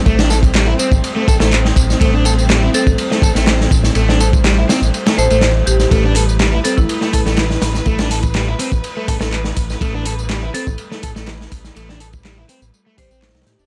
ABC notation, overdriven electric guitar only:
X:1
M:4/4
L:1/16
Q:1/4=123
K:Am
V:1 name="Overdriven electric guitar"
A, D A z G, E C z2 A, A A, z4 | A, D A z G, E C z2 A, A A, z4 | A, D A z G, E C z2 A, A A, z4 | A, D A z G, E C z2 A, A A, z4 |
A, D A z G, E C z2 A, A A, z4 | A, D A z G, E C z2 A, A A, z4 | A, D A z G, E C z2 A, G, C z3 D |]